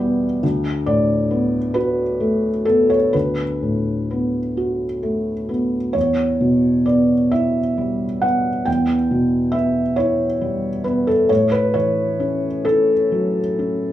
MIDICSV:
0, 0, Header, 1, 2, 480
1, 0, Start_track
1, 0, Tempo, 886263
1, 231, Time_signature, 6, 3, 24, 8
1, 1193, Tempo, 947867
1, 2153, Tempo, 920245
1, 4073, Tempo, 878477
1, 5993, Tempo, 904977
1, 6953, Tempo, 955414
1, 7365, End_track
2, 0, Start_track
2, 0, Title_t, "Felt piano"
2, 0, Program_c, 0, 0
2, 0, Control_c, 0, 64, 127
2, 0, Note_on_c, 0, 40, 60
2, 0, Note_on_c, 0, 47, 45
2, 0, Note_on_c, 0, 55, 52
2, 0, Note_on_c, 0, 59, 48
2, 0, Note_on_c, 0, 64, 50
2, 0, Note_on_c, 0, 67, 70
2, 134, Note_off_c, 0, 55, 0
2, 206, Note_off_c, 0, 40, 0
2, 226, Note_off_c, 0, 67, 0
2, 230, Note_off_c, 0, 59, 0
2, 234, Note_on_c, 0, 38, 56
2, 241, Control_c, 0, 64, 0
2, 242, Note_off_c, 0, 64, 0
2, 243, Note_off_c, 0, 47, 0
2, 336, Control_c, 0, 64, 127
2, 468, Note_on_c, 0, 74, 73
2, 471, Note_on_c, 0, 45, 44
2, 708, Note_on_c, 0, 59, 43
2, 853, Note_off_c, 0, 45, 0
2, 943, Note_on_c, 0, 71, 80
2, 947, Note_off_c, 0, 74, 0
2, 949, Note_on_c, 0, 66, 43
2, 1093, Note_off_c, 0, 59, 0
2, 1193, Note_on_c, 0, 57, 44
2, 1332, Note_off_c, 0, 66, 0
2, 1421, Note_on_c, 0, 69, 68
2, 1423, Note_off_c, 0, 71, 0
2, 1427, Note_on_c, 0, 59, 41
2, 1543, Note_off_c, 0, 69, 0
2, 1545, Note_on_c, 0, 73, 68
2, 1570, Note_off_c, 0, 57, 0
2, 1648, Note_off_c, 0, 38, 0
2, 1663, Note_on_c, 0, 71, 61
2, 1667, Note_off_c, 0, 73, 0
2, 1671, Note_on_c, 0, 38, 50
2, 1676, Control_c, 0, 64, 0
2, 1762, Control_c, 0, 64, 127
2, 1814, Note_off_c, 0, 59, 0
2, 1914, Note_on_c, 0, 45, 34
2, 2158, Note_on_c, 0, 59, 37
2, 2299, Note_off_c, 0, 45, 0
2, 2400, Note_on_c, 0, 66, 37
2, 2543, Note_off_c, 0, 59, 0
2, 2638, Note_on_c, 0, 57, 39
2, 2784, Note_off_c, 0, 66, 0
2, 2877, Note_off_c, 0, 71, 0
2, 2878, Note_on_c, 0, 59, 38
2, 3025, Note_off_c, 0, 57, 0
2, 3102, Note_off_c, 0, 38, 0
2, 3109, Note_on_c, 0, 73, 70
2, 3116, Note_on_c, 0, 40, 44
2, 3120, Note_off_c, 0, 59, 0
2, 3131, Control_c, 0, 64, 0
2, 3207, Control_c, 0, 64, 127
2, 3356, Note_on_c, 0, 47, 35
2, 3592, Note_off_c, 0, 73, 0
2, 3592, Note_on_c, 0, 74, 55
2, 3600, Note_on_c, 0, 59, 37
2, 3739, Note_off_c, 0, 47, 0
2, 3831, Note_on_c, 0, 76, 65
2, 3832, Note_off_c, 0, 74, 0
2, 3837, Note_on_c, 0, 64, 39
2, 3978, Note_off_c, 0, 59, 0
2, 4071, Note_on_c, 0, 55, 38
2, 4220, Note_off_c, 0, 64, 0
2, 4311, Note_on_c, 0, 78, 67
2, 4315, Note_off_c, 0, 76, 0
2, 4317, Note_on_c, 0, 59, 39
2, 4463, Note_off_c, 0, 55, 0
2, 4536, Note_off_c, 0, 40, 0
2, 4551, Note_on_c, 0, 79, 71
2, 4557, Note_off_c, 0, 78, 0
2, 4561, Note_on_c, 0, 40, 50
2, 4570, Control_c, 0, 64, 0
2, 4652, Control_c, 0, 64, 127
2, 4704, Note_off_c, 0, 59, 0
2, 4799, Note_on_c, 0, 47, 37
2, 5022, Note_on_c, 0, 76, 75
2, 5032, Note_off_c, 0, 79, 0
2, 5034, Note_on_c, 0, 59, 42
2, 5179, Note_off_c, 0, 47, 0
2, 5266, Note_on_c, 0, 73, 76
2, 5268, Note_off_c, 0, 76, 0
2, 5274, Note_on_c, 0, 64, 41
2, 5417, Note_off_c, 0, 59, 0
2, 5512, Note_on_c, 0, 55, 40
2, 5656, Note_off_c, 0, 64, 0
2, 5746, Note_on_c, 0, 71, 67
2, 5748, Note_off_c, 0, 73, 0
2, 5752, Note_on_c, 0, 59, 46
2, 5869, Note_off_c, 0, 71, 0
2, 5872, Note_on_c, 0, 69, 66
2, 5896, Note_off_c, 0, 55, 0
2, 5972, Note_off_c, 0, 40, 0
2, 5993, Note_off_c, 0, 59, 0
2, 5993, Note_off_c, 0, 69, 0
2, 5993, Note_on_c, 0, 73, 77
2, 5998, Note_on_c, 0, 45, 52
2, 6002, Control_c, 0, 64, 0
2, 6082, Control_c, 0, 64, 127
2, 6110, Note_off_c, 0, 73, 0
2, 6111, Note_on_c, 0, 71, 87
2, 6229, Note_off_c, 0, 71, 0
2, 6229, Note_on_c, 0, 73, 80
2, 6236, Note_on_c, 0, 52, 39
2, 6473, Note_on_c, 0, 61, 47
2, 6616, Note_off_c, 0, 52, 0
2, 6709, Note_off_c, 0, 73, 0
2, 6711, Note_on_c, 0, 69, 75
2, 6715, Note_on_c, 0, 64, 43
2, 6857, Note_off_c, 0, 61, 0
2, 6959, Note_on_c, 0, 54, 41
2, 7096, Note_off_c, 0, 64, 0
2, 7197, Note_on_c, 0, 61, 38
2, 7339, Note_off_c, 0, 54, 0
2, 7365, Note_off_c, 0, 45, 0
2, 7365, Note_off_c, 0, 61, 0
2, 7365, Note_off_c, 0, 69, 0
2, 7365, End_track
0, 0, End_of_file